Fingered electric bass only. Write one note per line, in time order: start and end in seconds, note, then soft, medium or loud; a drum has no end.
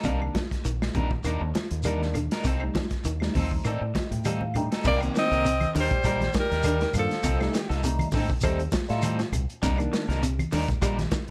0.05 0.28 C2 medium
0.65 0.88 A#1 medium
0.95 1.18 A#1 medium
1.25 1.37 D#2 medium
1.41 1.52 D#2 medium
1.55 muted fingered electric bass stroke soft
1.71 2.27 D#2 medium
2.45 2.68 C2 medium
3.05 3.28 D#2 medium
3.35 3.58 D#2 medium
3.65 3.78 A2 medium
3.81 3.92 A2 medium
3.95 muted fingered electric bass stroke soft
4.11 4.67 A2 medium
4.85 5.08 C2 loud
5.31 5.64 C2 medium
5.75 5.88 D#2 loud
6.04 6.27 A#1 loud
6.51 6.84 D#2 medium
6.95 7.07 G2 medium
7.24 7.47 C2 loud
7.70 8.03 C2 medium
8.14 8.26 A2 loud
8.43 8.66 D#2 loud
8.90 9.23 A2 medium
9.32 9.45 C2 medium
9.63 9.86 C2 loud
10.08 10.42 C2 loud
10.53 10.65 D#2 loud
10.82 11.05 A#1 loud